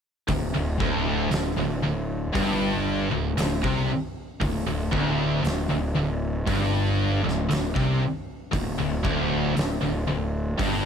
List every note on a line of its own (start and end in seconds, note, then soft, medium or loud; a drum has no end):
0.28 0.53 D1 medium
0.28 0.53 D2 medium
0.28 kick loud
0.28 open hi-hat medium
0.55 0.79 D1 medium
0.55 0.77 D2 medium
0.78 1.28 D1 medium
0.78 1.29 D2 loud
0.78 kick loud
1.31 1.56 D1 medium
1.31 1.55 D2 medium
1.31 snare loud
1.31 open hi-hat medium
1.56 1.82 D1 medium
1.56 1.81 D2 medium
1.82 2.32 D1 medium
1.82 2.24 D2 medium
2.35 3.08 G1 loud
2.35 3.11 G2 loud
2.35 kick loud
2.35 open hi-hat medium
3.12 3.36 D1 medium
3.12 3.36 D2 medium
3.37 3.62 D1 medium
3.37 3.63 D2 medium
3.37 snare loud
3.37 open hi-hat medium
3.63 3.88 C2 medium
3.63 3.88 C3 loud
3.63 kick loud
4.41 4.65 D1 medium
4.41 4.65 D2 medium
4.41 kick loud
4.41 open hi-hat medium
4.66 4.91 D1 medium
4.66 4.90 D2 medium
4.91 5.41 D1 medium
4.91 5.41 D2 loud
4.91 kick loud
5.43 5.68 D1 medium
5.43 5.68 D2 medium
5.43 open hi-hat medium
5.47 snare loud
5.69 5.94 D1 medium
5.69 5.93 D2 medium
5.95 6.44 D1 medium
5.95 6.37 D2 medium
6.47 7.21 G1 loud
6.47 7.23 G2 loud
6.47 kick loud
6.47 open hi-hat medium
7.24 7.49 D1 medium
7.24 7.48 D2 medium
7.28 snare soft
7.49 7.75 D1 medium
7.49 7.75 D2 medium
7.49 open hi-hat medium
7.53 snare loud
7.75 8.00 C2 medium
7.75 8.00 C3 loud
7.75 kick loud
8.52 8.78 D1 medium
8.52 8.77 D2 medium
8.52 kick medium
8.52 open hi-hat medium
8.79 9.03 D1 medium
8.79 9.03 D2 medium
9.04 9.53 D1 medium
9.04 9.55 D2 loud
9.04 kick loud
9.57 9.81 D1 medium
9.57 9.81 D2 medium
9.57 snare loud
9.57 open hi-hat medium
9.82 10.07 D1 medium
9.82 10.06 D2 medium
10.07 10.56 D1 medium
10.07 10.49 D2 medium
10.59 10.85 G1 loud
10.59 10.85 G2 loud
10.59 kick loud
10.59 open hi-hat medium